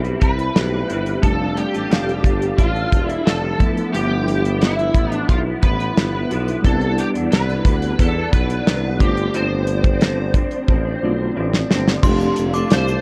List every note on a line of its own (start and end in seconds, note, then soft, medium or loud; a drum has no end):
0.00 0.15 B1 medium
0.00 0.84 G3 medium
0.00 0.85 B3 medium
0.00 0.86 C4 medium
0.00 0.87 E4 medium
0.00 0.21 B4 soft
0.04 0.19 G3 soft
0.04 0.20 C4 soft
0.04 0.21 E4 soft
0.04 closed hi-hat soft
0.20 0.49 C2 medium
0.20 0.54 G3 soft
0.20 0.54 C4 medium
0.20 0.55 E4 medium
0.20 1.22 B4 medium
0.20 0.55 B4 medium
0.20 kick medium
0.20 closed hi-hat medium
0.39 closed hi-hat soft
0.54 0.83 B1 medium
0.54 0.89 A2 medium
0.54 0.89 E3 medium
0.54 0.86 G3 medium
0.54 0.88 C4 medium
0.54 0.88 E4 medium
0.54 0.89 B4 medium
0.54 snare loud
0.54 closed hi-hat medium
0.88 1.16 G1 medium
0.88 1.21 G3 medium
0.88 1.23 C4 medium
0.88 1.23 E4 medium
0.88 1.23 B4 medium
0.88 closed hi-hat medium
1.06 closed hi-hat soft
1.21 1.64 F1 medium
1.21 1.73 F3 medium
1.21 3.55 G3 medium
1.21 1.74 G3 medium
1.21 3.56 A3 medium
1.21 3.57 C4 medium
1.21 1.74 D4 medium
1.21 1.72 F4 medium
1.21 1.58 A4 medium
1.21 1.71 A4 medium
1.21 kick medium
1.21 closed hi-hat medium
1.26 3.57 D4 medium
1.57 2.61 G4 medium
1.57 closed hi-hat medium
1.72 1.87 A1 medium
1.72 1.89 D4 soft
1.72 1.90 F4 soft
1.72 1.90 A4 soft
1.72 closed hi-hat soft
1.89 2.26 F1 medium
1.89 2.24 F3 medium
1.89 2.22 G3 medium
1.89 2.23 D4 medium
1.89 2.24 F4 medium
1.89 2.25 A4 medium
1.89 snare loud
1.89 closed hi-hat medium
2.09 closed hi-hat soft
2.23 2.52 G1 medium
2.23 2.56 G3 medium
2.23 2.57 D4 medium
2.23 2.58 F4 medium
2.23 2.58 A4 medium
2.23 kick medium
2.23 closed hi-hat medium
2.42 closed hi-hat soft
2.57 2.86 A1 medium
2.57 2.75 G3 medium
2.57 2.75 D4 medium
2.57 3.07 F4 medium
2.57 2.75 F4 medium
2.57 2.73 A4 medium
2.57 kick medium
2.57 closed hi-hat medium
2.74 2.91 D4 soft
2.74 2.92 F4 soft
2.74 2.92 A4 soft
2.74 closed hi-hat soft
2.91 3.19 E1 medium
2.91 3.25 G3 medium
2.91 3.26 D4 medium
2.91 3.26 F4 medium
2.91 3.26 A4 medium
2.91 kick medium
2.91 closed hi-hat medium
3.07 3.28 E4 medium
3.07 closed hi-hat soft
3.25 3.54 F1 medium
3.25 3.59 F3 medium
3.25 3.60 G3 medium
3.25 3.60 D4 medium
3.25 3.61 F4 medium
3.25 3.89 A4 medium
3.25 3.61 A4 medium
3.25 snare loud
3.25 closed hi-hat medium
3.58 3.92 D3 medium
3.58 6.25 F3 medium
3.58 3.93 F3 medium
3.58 6.26 A3 medium
3.58 3.93 B3 medium
3.58 6.27 B3 medium
3.58 3.94 E4 medium
3.58 kick medium
3.58 closed hi-hat medium
3.63 6.28 E5 medium
3.77 closed hi-hat soft
3.93 4.91 G1 loud
3.93 4.44 G2 medium
3.93 4.44 D3 medium
3.93 4.45 F3 medium
3.93 4.44 B3 medium
3.93 4.42 E4 medium
3.93 4.63 G4 medium
3.93 closed hi-hat medium
4.28 closed hi-hat medium
4.44 4.61 F3 soft
4.44 4.61 B3 soft
4.44 4.61 E4 soft
4.44 closed hi-hat soft
4.61 4.95 G2 medium
4.61 4.93 D3 medium
4.61 4.94 F3 medium
4.61 4.95 B3 medium
4.61 5.13 E4 medium
4.61 4.96 E4 medium
4.61 snare medium
4.61 closed hi-hat medium
4.79 closed hi-hat soft
4.94 5.22 A1 medium
4.94 5.27 D3 medium
4.94 5.28 F3 medium
4.94 5.30 B3 medium
4.94 5.30 E4 medium
4.94 kick medium
4.94 closed hi-hat medium
5.12 5.29 D4 medium
5.12 closed hi-hat soft
5.28 5.56 B1 medium
5.28 5.46 D3 medium
5.28 5.46 F3 medium
5.28 5.45 B3 medium
5.28 5.43 E4 medium
5.28 5.38 F4 medium
5.28 kick medium
5.28 closed hi-hat medium
5.45 5.62 F3 soft
5.45 5.63 B3 soft
5.45 5.62 E4 soft
5.62 5.90 A1 medium
5.62 5.95 D3 medium
5.62 5.96 F3 medium
5.62 5.96 B3 medium
5.62 5.97 E4 medium
5.62 6.64 B4 medium
5.62 kick medium
5.62 closed hi-hat medium
5.80 closed hi-hat soft
5.96 6.24 G1 medium
5.96 6.13 G2 medium
5.96 6.14 D3 medium
5.96 6.14 F3 medium
5.96 6.13 B3 medium
5.96 6.11 E4 medium
5.96 snare loud
5.96 closed hi-hat medium
6.13 6.30 F3 soft
6.13 6.31 B3 soft
6.13 6.30 E4 soft
6.30 6.57 B1 medium
6.30 6.63 D3 medium
6.30 6.64 F3 medium
6.30 6.64 B3 medium
6.30 6.65 E4 medium
6.30 closed hi-hat medium
6.48 closed hi-hat soft
6.62 7.05 C2 loud
6.62 7.15 C3 medium
6.62 7.15 E3 medium
6.62 8.95 G3 medium
6.62 8.96 B3 medium
6.62 7.14 B3 medium
6.62 7.13 D4 medium
6.62 8.97 D4 medium
6.62 6.99 A4 medium
6.62 kick medium
6.62 closed hi-hat medium
6.67 8.98 E4 medium
6.81 closed hi-hat soft
6.98 7.08 G4 medium
6.98 closed hi-hat medium
7.14 7.28 E2 medium
7.14 7.31 E3 soft
7.14 7.32 B3 soft
7.14 7.31 D4 medium
7.14 closed hi-hat soft
7.31 7.59 C2 medium
7.31 7.63 C3 medium
7.31 7.64 E3 medium
7.31 7.66 B3 medium
7.31 7.66 D4 medium
7.31 8.01 B4 medium
7.31 snare medium
7.31 closed hi-hat medium
7.50 closed hi-hat soft
7.65 7.92 D2 medium
7.65 7.97 C3 medium
7.65 7.98 E3 medium
7.65 7.99 B3 medium
7.65 8.00 D4 medium
7.65 kick medium
7.65 closed hi-hat medium
7.82 closed hi-hat soft
7.99 8.26 E2 medium
7.99 8.16 C3 medium
7.99 8.16 E3 medium
7.99 8.16 B3 medium
7.99 8.14 D4 medium
7.99 8.33 A4 medium
7.99 kick medium
7.99 closed hi-hat medium
8.16 8.32 E3 soft
8.16 8.33 B3 soft
8.16 8.33 D4 soft
8.33 8.60 B1 medium
8.33 8.66 E3 medium
8.33 8.67 B3 medium
8.33 8.67 D4 medium
8.33 9.03 B4 medium
8.33 kick medium
8.33 closed hi-hat medium
8.50 closed hi-hat soft
8.66 9.02 C2 medium
8.66 8.99 C3 medium
8.66 9.00 E3 medium
8.66 9.01 B3 medium
8.66 9.01 D4 medium
8.66 snare loud
8.66 closed hi-hat medium
8.99 9.27 G1 loud
8.99 9.33 D3 medium
8.99 9.34 F3 medium
8.99 10.98 A3 medium
8.99 10.98 C4 medium
8.99 9.34 C4 medium
8.99 11.00 D4 medium
8.99 9.35 G4 medium
8.99 kick medium
8.99 closed hi-hat medium
9.03 9.35 D4 medium
9.03 11.00 F4 medium
9.17 closed hi-hat soft
9.34 10.42 G1 loud
9.34 9.85 G2 medium
9.34 9.85 D3 medium
9.34 9.85 F3 medium
9.34 9.85 C4 medium
9.34 9.83 D4 medium
9.34 11.33 C5 medium
9.34 closed hi-hat medium
9.67 closed hi-hat medium
9.84 10.00 F3 soft
9.84 10.01 C4 soft
9.84 10.01 D4 soft
9.84 kick medium
9.84 closed hi-hat soft
10.00 10.35 G2 medium
10.00 10.33 D3 medium
10.00 10.34 F3 medium
10.00 10.35 C4 medium
10.00 10.36 D4 medium
10.00 snare loud
10.00 closed hi-hat medium
10.34 10.67 D3 medium
10.34 10.68 F3 medium
10.34 10.68 C4 medium
10.34 10.69 D4 medium
10.34 kick medium
10.34 closed hi-hat medium
10.51 closed hi-hat soft
10.68 10.96 A1 medium
10.68 10.85 D3 medium
10.68 10.86 F3 medium
10.68 10.86 C4 medium
10.68 10.84 D4 medium
10.68 kick medium
10.85 11.02 F3 soft
10.85 11.03 C4 medium
10.85 11.02 D4 medium
11.02 11.30 B1 medium
11.02 11.34 D3 medium
11.02 11.35 F3 medium
11.02 12.04 A3 medium
11.02 12.03 C4 soft
11.02 11.35 C4 medium
11.02 12.04 D4 soft
11.02 11.36 D4 medium
11.02 12.05 F4 medium
11.35 11.63 A1 medium
11.35 11.53 G2 medium
11.35 11.53 D3 medium
11.35 11.53 F3 medium
11.35 11.53 C4 medium
11.35 11.51 D4 medium
11.52 11.69 F3 soft
11.52 11.70 C4 soft
11.52 11.70 D4 soft
11.52 snare medium
11.69 11.97 G1 medium
11.69 12.02 D3 medium
11.69 12.02 F3 medium
11.69 12.04 C4 medium
11.69 12.03 D4 medium
11.69 snare medium
11.88 snare medium
12.02 12.30 F1 loud
12.02 12.54 F3 medium
12.02 12.54 G3 medium
12.02 12.10 G#3 medium
12.02 13.01 C4 medium
12.02 12.54 D4 medium
12.02 13.01 D4 medium
12.02 12.53 F4 medium
12.02 12.52 A4 medium
12.02 12.35 C6 medium
12.02 kick medium
12.02 crash loud
12.02 shaker medium
12.07 13.01 A3 medium
12.07 13.01 G4 medium
12.20 shaker soft
12.36 12.64 F1 medium
12.36 closed hi-hat medium
12.36 shaker soft
12.53 12.69 D4 soft
12.53 12.70 F4 medium
12.53 12.70 A4 medium
12.53 13.01 D6 medium
12.53 closed hi-hat soft
12.53 shaker soft
12.69 12.98 C2 medium
12.69 12.87 F3 medium
12.69 12.87 G3 medium
12.69 12.88 D4 medium
12.69 12.87 F4 medium
12.69 12.85 A4 medium
12.69 snare loud
12.69 closed hi-hat medium
12.69 shaker medium
12.74 13.01 C5 medium
12.87 13.01 D4 soft
12.87 13.01 F4 soft
12.87 13.01 A4 soft
12.87 shaker soft